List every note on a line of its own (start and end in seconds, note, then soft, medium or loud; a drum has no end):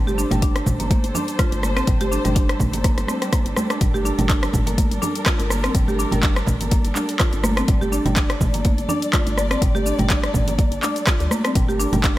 0.00 0.24 G1 loud
0.00 12.18 G3 medium
0.00 12.18 D4 medium
0.00 12.18 A4 medium
0.00 3.80 C5 medium
0.07 0.18 G4 loud
0.07 high conga medium
0.07 shaker soft
0.18 0.31 D4 loud
0.18 shaker medium
0.31 0.61 G1 medium
0.31 0.41 G3 loud
0.31 closed hi-hat soft
0.31 mid tom medium
0.31 high conga loud
0.31 low conga medium
0.31 shaker soft
0.42 0.54 D4 medium
0.42 kick loud
0.42 closed hi-hat medium
0.42 shaker medium
0.56 cross-stick medium
0.56 closed hi-hat soft
0.56 shaker soft
0.66 0.97 G1 medium
0.66 kick medium
0.66 mid tom loud
0.66 high conga medium
0.66 low conga loud
0.66 shaker medium
0.80 0.90 A#3 medium
0.80 closed hi-hat soft
0.80 low conga medium
0.80 shaker soft
0.91 1.03 A#3 medium
0.91 kick loud
0.91 closed hi-hat medium
0.91 high conga medium
0.91 shaker soft
1.04 1.11 G1 medium
1.04 closed hi-hat soft
1.04 shaker soft
1.15 1.22 D4 loud
1.15 low conga loud
1.15 shaker medium
1.28 closed hi-hat soft
1.28 shaker soft
1.39 1.46 F4 medium
1.39 kick loud
1.39 cross-stick loud
1.39 closed hi-hat medium
1.39 high conga medium
1.39 shaker medium
1.52 1.82 G1 loud
1.52 closed hi-hat soft
1.52 high conga medium
1.52 shaker soft
1.63 1.75 A#3 medium
1.63 cross-stick medium
1.63 shaker medium
1.77 1.86 C4 loud
1.77 cross-stick loud
1.77 closed hi-hat soft
1.77 shaker soft
1.87 2.18 G1 loud
1.87 1.99 G3 medium
1.87 kick loud
1.87 closed hi-hat medium
1.87 mid tom medium
1.87 shaker medium
2.01 2.11 G4 loud
2.01 closed hi-hat soft
2.01 high conga medium
2.01 shaker soft
2.12 2.24 D4 loud
2.12 shaker medium
2.25 2.54 G1 medium
2.25 2.35 G3 loud
2.25 closed hi-hat soft
2.25 mid tom medium
2.25 high conga loud
2.25 low conga loud
2.25 shaker soft
2.36 2.48 D4 loud
2.36 kick loud
2.36 closed hi-hat medium
2.36 shaker soft
2.49 cross-stick medium
2.49 closed hi-hat soft
2.49 shaker soft
2.60 2.91 G1 loud
2.60 kick medium
2.60 mid tom medium
2.60 high conga medium
2.60 low conga loud
2.60 shaker medium
2.73 2.83 A#3 medium
2.73 closed hi-hat medium
2.73 low conga medium
2.73 shaker soft
2.84 2.96 A#3 medium
2.84 kick loud
2.84 cross-stick medium
2.84 closed hi-hat medium
2.84 shaker soft
2.98 3.05 G1 medium
2.98 cross-stick medium
2.98 closed hi-hat soft
2.98 shaker soft
3.08 3.20 C4 medium
3.08 cross-stick medium
3.08 high conga medium
3.08 shaker medium
3.22 3.32 G3 medium
3.22 cross-stick medium
3.22 closed hi-hat soft
3.22 shaker soft
3.33 3.40 A#3 medium
3.33 kick loud
3.33 cross-stick medium
3.33 closed hi-hat medium
3.33 shaker medium
3.46 3.53 G1 medium
3.46 closed hi-hat soft
3.46 shaker soft
3.57 3.69 G3 medium
3.57 cross-stick medium
3.57 high conga loud
3.57 shaker medium
3.70 3.76 D4 medium
3.70 cross-stick loud
3.70 closed hi-hat soft
3.70 shaker soft
3.81 4.12 G1 loud
3.81 3.93 G3 medium
3.81 7.67 A#4 medium
3.81 kick loud
3.81 closed hi-hat medium
3.81 mid tom medium
3.81 shaker medium
3.94 4.05 G4 loud
3.94 high conga medium
3.94 shaker soft
4.05 4.18 D4 loud
4.05 shaker medium
4.18 4.48 G1 medium
4.18 4.28 G3 loud
4.18 closed hi-hat soft
4.18 mid tom medium
4.18 high conga loud
4.18 low conga loud
4.18 shaker soft
4.29 4.41 D4 loud
4.29 kick loud
4.29 clap loud
4.29 closed hi-hat medium
4.29 shaker medium
4.43 cross-stick loud
4.43 closed hi-hat soft
4.43 shaker soft
4.53 4.84 G1 loud
4.53 kick medium
4.53 mid tom medium
4.53 high conga loud
4.53 low conga loud
4.53 shaker medium
4.67 4.77 A#3 medium
4.67 closed hi-hat soft
4.67 low conga loud
4.67 shaker soft
4.78 4.90 A#3 medium
4.78 kick loud
4.78 closed hi-hat medium
4.78 high conga loud
4.78 shaker medium
4.91 4.98 G1 medium
4.91 closed hi-hat soft
4.91 shaker soft
5.02 5.09 D4 loud
5.02 low conga loud
5.02 shaker medium
5.16 closed hi-hat soft
5.16 shaker soft
5.26 5.33 F4 medium
5.26 kick loud
5.26 cross-stick loud
5.26 clap loud
5.26 closed hi-hat medium
5.26 high conga medium
5.26 shaker medium
5.40 5.69 G1 loud
5.40 closed hi-hat soft
5.40 high conga medium
5.40 shaker soft
5.50 5.62 A#3 medium
5.50 cross-stick medium
5.50 shaker medium
5.64 5.73 C4 loud
5.64 cross-stick loud
5.64 closed hi-hat soft
5.64 shaker soft
5.75 6.05 G1 loud
5.75 5.87 G3 medium
5.75 kick loud
5.75 closed hi-hat medium
5.75 mid tom medium
5.75 shaker medium
5.88 5.98 G4 loud
5.88 high conga loud
5.88 shaker soft
5.99 6.12 D4 loud
5.99 shaker loud
6.11 6.42 G1 medium
6.11 6.22 G3 loud
6.11 closed hi-hat soft
6.11 mid tom medium
6.11 high conga loud
6.11 low conga loud
6.11 shaker soft
6.23 6.35 D4 loud
6.23 kick loud
6.23 clap loud
6.23 closed hi-hat medium
6.23 shaker medium
6.36 cross-stick loud
6.36 closed hi-hat soft
6.36 shaker soft
6.47 6.78 G1 loud
6.47 kick medium
6.47 mid tom medium
6.47 high conga medium
6.47 low conga loud
6.47 shaker medium
6.61 6.70 A#3 medium
6.61 closed hi-hat soft
6.61 low conga medium
6.61 shaker soft
6.71 6.83 A#3 medium
6.71 kick loud
6.71 closed hi-hat medium
6.71 shaker medium
6.85 6.92 G1 medium
6.85 closed hi-hat soft
6.85 shaker soft
6.96 7.03 D4 loud
6.96 clap medium
6.96 high conga medium
6.96 shaker loud
7.09 closed hi-hat soft
7.09 shaker soft
7.20 7.27 F4 medium
7.20 kick loud
7.20 cross-stick loud
7.20 clap loud
7.20 closed hi-hat medium
7.20 shaker medium
7.33 7.62 G1 loud
7.33 closed hi-hat soft
7.33 shaker soft
7.44 7.56 A#3 medium
7.44 cross-stick medium
7.44 high conga loud
7.44 shaker loud
7.57 7.67 C4 loud
7.57 cross-stick loud
7.57 closed hi-hat soft
7.57 shaker soft
7.68 7.99 G1 loud
7.68 7.80 G3 medium
7.68 11.54 D5 medium
7.68 kick loud
7.68 closed hi-hat medium
7.68 mid tom medium
7.68 shaker medium
7.81 7.92 G4 loud
7.81 high conga loud
7.81 shaker soft
7.92 8.05 D4 loud
7.92 shaker loud
8.06 8.35 G1 medium
8.06 8.15 G3 loud
8.06 closed hi-hat soft
8.06 mid tom medium
8.06 high conga loud
8.06 low conga loud
8.06 shaker soft
8.16 8.29 D4 loud
8.16 kick loud
8.16 clap loud
8.16 closed hi-hat medium
8.16 shaker medium
8.30 cross-stick loud
8.30 closed hi-hat soft
8.30 shaker soft
8.40 8.71 G1 medium
8.40 kick medium
8.40 mid tom medium
8.40 high conga medium
8.40 low conga loud
8.40 shaker loud
8.54 8.64 A#3 medium
8.54 closed hi-hat soft
8.54 low conga medium
8.54 shaker soft
8.65 8.77 A#3 medium
8.65 kick loud
8.65 closed hi-hat medium
8.65 high conga medium
8.65 shaker medium
8.78 8.85 G1 medium
8.78 closed hi-hat soft
8.78 shaker soft
8.89 8.96 D4 loud
8.89 low conga loud
8.89 shaker loud
9.02 closed hi-hat soft
9.02 shaker soft
9.13 9.20 F4 medium
9.13 kick loud
9.13 cross-stick loud
9.13 clap loud
9.13 closed hi-hat medium
9.13 high conga medium
9.13 shaker medium
9.26 9.56 G1 loud
9.26 closed hi-hat soft
9.26 high conga medium
9.26 shaker soft
9.38 9.49 A#3 medium
9.38 cross-stick medium
9.38 shaker loud
9.51 9.61 C4 loud
9.51 cross-stick loud
9.51 closed hi-hat soft
9.51 shaker soft
9.62 9.92 G1 loud
9.62 9.74 G3 medium
9.62 kick loud
9.62 closed hi-hat medium
9.62 mid tom medium
9.62 shaker medium
9.75 9.85 G4 loud
9.75 high conga loud
9.75 shaker soft
9.86 9.99 D4 loud
9.86 shaker loud
9.99 10.28 G1 medium
9.99 10.09 G3 loud
9.99 closed hi-hat soft
9.99 mid tom medium
9.99 high conga loud
9.99 low conga loud
9.99 shaker soft
10.10 10.22 D4 loud
10.10 kick loud
10.10 clap loud
10.10 closed hi-hat medium
10.10 shaker medium
10.24 cross-stick medium
10.24 closed hi-hat soft
10.24 shaker soft
10.34 10.65 G1 loud
10.34 kick medium
10.34 mid tom loud
10.34 high conga medium
10.34 low conga loud
10.34 shaker medium
10.48 10.57 A#3 medium
10.48 closed hi-hat soft
10.48 low conga medium
10.48 shaker soft
10.59 10.71 A#3 medium
10.59 kick loud
10.59 closed hi-hat medium
10.59 shaker medium
10.71 10.79 G1 medium
10.71 closed hi-hat soft
10.71 shaker soft
10.83 10.90 D4 loud
10.83 clap medium
10.83 high conga medium
10.83 shaker loud
10.96 closed hi-hat soft
10.96 shaker soft
11.07 11.14 F4 medium
11.07 kick loud
11.07 cross-stick medium
11.07 clap loud
11.07 closed hi-hat medium
11.07 shaker medium
11.20 11.27 D2 medium
11.20 closed hi-hat soft
11.20 shaker soft
11.31 11.43 A#3 medium
11.31 cross-stick medium
11.31 high conga loud
11.31 shaker medium
11.44 11.54 C4 loud
11.44 cross-stick loud
11.44 closed hi-hat soft
11.44 shaker soft
11.55 11.86 G1 loud
11.55 11.67 G3 medium
11.55 12.18 A#4 medium
11.55 kick loud
11.55 closed hi-hat medium
11.55 mid tom medium
11.55 shaker medium
11.69 11.79 G4 loud
11.69 high conga medium
11.69 shaker soft
11.80 11.92 D4 loud
11.80 shaker medium
11.93 12.18 G1 medium
11.93 12.03 G3 loud
11.93 closed hi-hat soft
11.93 mid tom medium
11.93 high conga loud
11.93 low conga loud
11.93 shaker soft
12.04 12.16 D4 loud
12.04 kick loud
12.04 clap loud
12.04 closed hi-hat medium
12.04 shaker medium